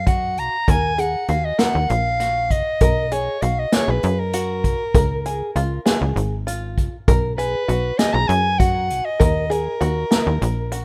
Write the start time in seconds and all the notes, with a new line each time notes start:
Already playing: F#2
0.06 F#4 F#5, kick, closed hi-hat
0.37 B1 A#5, closed hi-hat
0.68 D#2 A#4 G#5, kick, closed hi-hat
0.98 G#4 F#5, closed hi-hat
1.28 D#2 F#4 F5, closed hi-hat
1.45 D#5
1.58 A#4 F#5, snare, closed hi-hat
1.75 D#2
1.90 A#1 F5, closed hi-hat
2.20 F#4, snare, closed hi-hat
2.51 C#2 D#5, kick, closed hi-hat
2.81 B1 A#4, kick, closed hi-hat
3.11 G#4 C#5, closed hi-hat
3.42 B1 F#4 F5, closed hi-hat
3.59 D#5
3.72 G#4 C#5, snare, closed hi-hat
3.88 B1 B4
4.03 F#2, closed hi-hat
4.20 A#4
4.33 F#4, closed hi-hat
4.64 B1, kick, closed hi-hat
4.95 C#2 A#4, kick, closed hi-hat
5.26 G#4, closed hi-hat
5.56 C#2 F4, closed hi-hat
5.86 G#4, snare, closed hi-hat
6.01 C#2
6.16 G#1, closed hi-hat
6.47 F4, closed hi-hat
6.78 C#2, kick, closed hi-hat
7.08 B1 A#4, kick, closed hi-hat
7.38 G#4 B4, closed hi-hat
7.68 B1 F#4, closed hi-hat
7.99 G#4 D#5, snare, closed hi-hat
8.14 B1 A#5
8.28 F#2 G#5, closed hi-hat
8.59 F#4 F#5, kick, closed hi-hat
8.90 B1, closed hi-hat
9.05 D#5
9.20 D#2 A#4, kick, closed hi-hat
9.50 G#4 A#4, closed hi-hat
9.81 D#2 F#4, closed hi-hat
10.11 A#4, snare, closed hi-hat
10.27 D#2
10.42 A#1, closed hi-hat
10.72 F#4, closed hi-hat